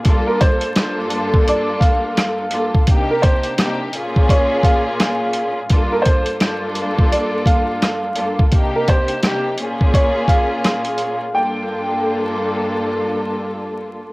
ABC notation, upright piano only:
X:1
M:4/4
L:1/16
Q:"Swing 16ths" 1/4=85
K:Bblyd
V:1 name="Upright piano"
z B c3 z3 d2 f6 | z B c3 z3 _d2 f6 | z B c3 z3 d2 f6 | z B c3 z3 _d2 f6 |
g12 z4 |]